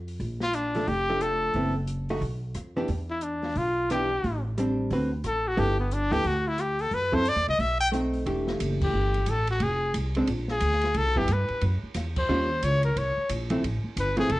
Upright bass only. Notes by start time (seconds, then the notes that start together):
Already playing: F2
0.20 A#1
0.88 F1
1.54 F#1
2.21 B1
2.55 F2
2.89 E2
3.56 B1
4.24 A1
4.90 D2
5.24 A1
5.58 G1
6.12 D2
6.25 D2
6.91 F#2
7.36 E2
7.48 C2
7.59 B1
8.26 E1
8.60 F#1
8.93 G1
9.27 A1
9.60 F1
9.94 C2
10.28 A#1
10.61 D2
10.94 C2
11.06 B1
11.17 G1
11.28 G2
11.50 muted upright bass stroke
11.62 F#2
11.83 muted upright bass stroke
11.95 E2
12.29 D#2
12.63 C#2
12.97 C2
13.18 muted upright bass stroke
13.30 A#1
13.63 A1
13.84 muted upright bass stroke
13.97 G1
14.30 F1